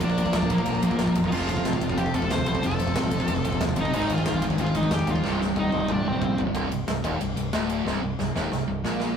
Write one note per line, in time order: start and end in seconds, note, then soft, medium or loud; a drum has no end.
0.00 0.31 A#1 loud
0.00 0.17 A#2 medium
0.00 0.17 F3 medium
0.00 0.32 A#3 medium
0.00 3.90 F4 medium
0.00 1.31 A#4 medium
0.00 1.30 D5 medium
0.00 1.30 A#5 medium
0.00 kick medium
0.00 ride loud
0.04 1.33 A#3 loud
0.04 0.36 D4 medium
0.10 kick medium
0.18 0.26 A#2 medium
0.18 0.25 F3 medium
0.18 kick medium
0.18 ride medium
0.26 0.34 A#2 medium
0.26 0.34 F3 medium
0.26 kick medium
0.33 0.49 D1 medium
0.33 0.42 A#2 medium
0.33 0.42 F3 medium
0.33 0.49 A#3 medium
0.33 kick medium
0.33 snare loud
0.33 ride loud
0.37 0.53 D4 medium
0.42 0.50 A#2 medium
0.42 0.50 F3 medium
0.42 kick medium
0.50 0.65 A#1 medium
0.50 0.59 A#2 medium
0.50 0.59 F3 medium
0.50 1.12 F3 medium
0.50 1.12 A#3 medium
0.50 kick medium
0.50 ride medium
0.58 0.67 A#2 medium
0.58 0.67 F3 loud
0.58 kick medium
0.66 0.82 A#1 medium
0.66 0.83 A#2 medium
0.66 0.83 F3 medium
0.66 kick medium
0.66 ride loud
0.75 kick medium
0.82 0.98 A#1 medium
0.82 0.92 A#2 medium
0.82 0.91 F3 loud
0.82 kick medium
0.82 ride medium
0.91 1.00 A#2 medium
0.91 1.00 F3 medium
0.91 kick medium
0.99 1.15 G#1 medium
0.99 1.15 A#2 medium
0.99 1.16 F3 medium
0.99 kick medium
0.99 snare loud
0.99 ride loud
1.07 kick loud
1.15 1.31 F1 medium
1.15 1.24 A#2 medium
1.15 1.24 F3 medium
1.15 kick medium
1.15 ride medium
1.24 1.33 A#2 medium
1.24 1.33 F3 medium
1.24 kick medium
1.28 1.31 C4 medium
1.28 1.31 D#4 medium
1.28 1.46 F4 loud
1.28 crash loud
1.32 1.62 F1 loud
1.32 1.48 F2 loud
1.32 1.48 C3 medium
1.32 1.49 F3 loud
1.32 1.48 C4 medium
1.32 3.91 A4 medium
1.32 6.51 C5 medium
1.32 3.92 A5 medium
1.32 kick medium
1.41 kick loud
1.47 1.56 F2 medium
1.47 1.56 C3 medium
1.47 1.95 C4 medium
1.47 1.99 F4 loud
1.47 kick medium
1.47 ride medium
1.57 1.63 F2 medium
1.57 1.64 C3 medium
1.57 kick loud
1.64 1.80 A1 medium
1.64 1.72 F2 medium
1.64 1.72 C3 medium
1.64 kick medium
1.64 snare loud
1.64 ride loud
1.73 1.81 F2 medium
1.73 1.81 C3 medium
1.73 kick medium
1.81 1.96 F1 loud
1.81 1.90 F2 medium
1.81 1.89 C3 medium
1.81 kick medium
1.81 ride medium
1.89 1.96 F2 medium
1.89 1.96 C3 medium
1.89 kick loud
1.97 2.12 F1 medium
1.97 2.12 F2 medium
1.97 2.12 C3 medium
1.97 2.16 C4 medium
1.97 2.14 G4 loud
1.97 kick medium
1.97 ride loud
2.06 kick medium
2.14 2.29 F1 medium
2.14 2.22 F2 medium
2.14 2.22 C3 medium
2.14 2.31 F4 medium
2.14 2.31 A4 loud
2.14 kick medium
2.14 ride medium
2.22 2.30 F2 medium
2.22 2.30 C3 medium
2.22 kick medium
2.30 2.45 D#2 medium
2.30 2.45 F2 medium
2.30 2.45 C3 medium
2.30 2.47 A4 medium
2.30 2.47 C5 loud
2.30 kick medium
2.30 snare loud
2.30 ride loud
2.38 kick medium
2.46 2.62 C2 loud
2.46 2.54 F2 medium
2.46 2.54 C3 medium
2.46 2.63 A4 medium
2.46 2.64 C5 loud
2.46 kick medium
2.46 ride medium
2.55 2.62 F2 medium
2.55 2.62 C3 medium
2.55 kick medium
2.63 2.93 F1 loud
2.63 2.78 F2 medium
2.63 2.77 C3 medium
2.63 3.94 F3 loud
2.63 3.57 F4 medium
2.63 3.58 A4 loud
2.63 kick medium
2.63 ride loud
2.71 kick medium
2.79 2.86 F2 medium
2.79 2.86 C3 medium
2.79 kick medium
2.79 ride medium
2.87 2.94 F2 medium
2.87 2.94 C3 medium
2.87 kick medium
2.95 3.10 A1 medium
2.95 3.03 F2 medium
2.95 3.02 C3 medium
2.95 kick medium
2.95 snare loud
2.95 ride loud
3.03 3.11 F2 medium
3.03 3.10 C3 medium
3.03 kick medium
3.11 3.26 F1 loud
3.11 3.20 F2 medium
3.11 3.19 C3 medium
3.11 kick medium
3.11 ride medium
3.20 3.27 F2 medium
3.20 3.28 C3 medium
3.20 kick loud
3.28 3.43 F1 loud
3.28 3.43 F2 medium
3.28 3.43 C3 medium
3.28 kick loud
3.28 ride loud
3.36 kick medium
3.45 3.59 F1 medium
3.45 3.53 F2 medium
3.45 3.53 C3 medium
3.45 kick medium
3.45 ride medium
3.53 3.61 F2 medium
3.53 3.61 C3 medium
3.53 kick medium
3.61 3.75 D#2 loud
3.61 3.76 F2 medium
3.61 3.76 C3 medium
3.61 kick medium
3.61 snare loud
3.61 ride loud
3.69 kick medium
3.76 3.92 G1 medium
3.76 3.85 F2 medium
3.76 3.85 C3 medium
3.76 3.93 C4 medium
3.76 kick medium
3.76 ride medium
3.80 3.94 D#4 medium
3.85 3.93 F2 medium
3.85 3.93 C3 medium
3.85 kick medium
3.93 4.23 G#1 loud
3.93 4.09 G#2 loud
3.93 4.09 D#3 loud
3.93 4.09 G#3 medium
3.93 4.09 C4 medium
3.93 6.52 D#4 medium
3.93 4.13 D#4 loud
3.93 5.22 G#4 medium
3.93 5.23 G#5 medium
3.93 kick medium
3.93 crash loud
4.02 kick loud
4.10 4.18 G#2 medium
4.10 4.18 D#3 medium
4.10 4.44 C4 loud
4.10 4.44 F4 loud
4.10 kick medium
4.10 ride medium
4.18 4.25 G#2 medium
4.18 4.26 D#3 medium
4.18 kick medium
4.26 4.41 C2 medium
4.26 4.33 G#2 medium
4.26 4.33 D#3 medium
4.26 kick medium
4.26 snare loud
4.26 ride loud
4.34 4.41 G#2 medium
4.34 4.41 D#3 medium
4.34 kick medium
4.42 4.57 G#1 medium
4.42 4.49 G#2 medium
4.42 4.49 D#3 medium
4.42 kick medium
4.42 ride medium
4.50 4.56 G#2 medium
4.50 4.57 D#3 medium
4.50 kick medium
4.58 4.73 G#1 medium
4.58 4.73 G#2 medium
4.58 4.73 D#3 loud
4.58 4.75 C4 medium
4.58 4.76 F4 loud
4.58 kick loud
4.58 ride loud
4.67 kick medium
4.74 4.89 G#1 medium
4.74 4.82 G#2 medium
4.74 4.81 D#3 medium
4.74 4.92 C4 medium
4.74 4.92 D#4 medium
4.74 kick medium
4.74 ride medium
4.82 4.89 G#2 medium
4.82 4.89 D#3 medium
4.82 kick medium
4.90 5.06 F2 medium
4.90 5.05 G#2 medium
4.90 5.05 D#3 loud
4.90 5.08 D#4 medium
4.90 kick medium
4.90 snare loud
4.90 ride loud
4.94 5.09 G4 loud
4.99 kick loud
5.06 5.22 D#2 loud
5.06 5.14 G#2 medium
5.06 5.14 D#3 medium
5.06 5.39 C4 medium
5.06 5.39 F4 loud
5.06 kick loud
5.06 ride medium
5.15 5.21 G#2 medium
5.15 5.22 D#3 medium
5.15 kick medium
5.22 5.53 C1 loud
5.22 5.38 C2 medium
5.22 5.37 G2 loud
5.22 5.39 C3 loud
5.22 6.53 G4 medium
5.22 6.53 G5 medium
5.22 kick medium
5.22 snare medium
5.38 5.46 C2 medium
5.38 5.45 G2 medium
5.38 snare medium
5.46 5.54 C2 medium
5.46 5.54 G2 medium
5.55 5.71 D#1 medium
5.55 5.62 C2 medium
5.55 5.62 G2 medium
5.55 kick medium
5.59 5.70 C2 medium
5.59 5.69 G2 medium
5.59 5.88 C4 medium
5.59 5.91 D#4 loud
5.71 5.88 C1 loud
5.71 5.78 C2 medium
5.71 5.79 G2 medium
5.71 high tom medium
5.80 5.87 C2 medium
5.80 5.86 G2 medium
5.88 6.04 C1 loud
5.88 6.02 C2 medium
5.88 6.03 G2 medium
5.88 kick medium
5.88 mid tom loud
5.92 6.06 G3 medium
5.92 6.08 D4 medium
6.04 6.20 C1 medium
6.04 6.12 C2 medium
6.04 6.11 G2 medium
6.04 6.39 G3 medium
6.04 6.39 C4 medium
6.13 6.20 C2 medium
6.13 6.21 G2 medium
6.21 6.36 A#1 loud
6.21 6.36 C2 medium
6.21 6.36 G2 medium
6.21 kick medium
6.21 floor tom loud
6.38 6.54 G1 medium
6.38 6.45 C2 medium
6.38 6.45 G2 medium
6.38 floor tom loud
6.46 6.52 C2 medium
6.46 6.54 G2 medium
6.53 6.70 C1 loud
6.53 6.68 C2 loud
6.53 kick loud
6.53 ride loud
6.69 6.86 C1 medium
6.69 6.83 C2 medium
6.69 ride medium
6.87 7.03 C1 medium
6.87 7.00 C2 medium
6.87 snare loud
6.87 ride loud
7.03 7.19 D#1 medium
7.03 7.19 D#2 loud
7.03 kick loud
7.03 ride medium
7.20 7.36 C1 medium
7.20 7.33 C2 medium
7.20 ride medium
7.36 7.52 C1 medium
7.36 7.49 C2 medium
7.36 ride medium
7.53 7.84 D1 medium
7.53 7.85 D2 loud
7.53 snare loud
7.53 ride medium
7.70 ride medium
7.86 8.01 C1 loud
7.86 8.01 C2 loud
7.86 snare medium
8.02 8.17 C1 medium
8.02 8.15 C2 medium
8.19 8.34 C1 medium
8.19 8.32 C2 medium
8.19 snare medium
8.35 8.51 D#1 loud
8.35 8.51 D#2 medium
8.35 snare medium
8.51 8.66 C1 medium
8.51 8.64 C2 medium
8.51 snare medium
8.67 8.83 C1 medium
8.67 8.81 C2 medium
8.84 9.15 A#1 medium
8.84 9.16 A#2 loud
8.84 snare medium
9.00 snare medium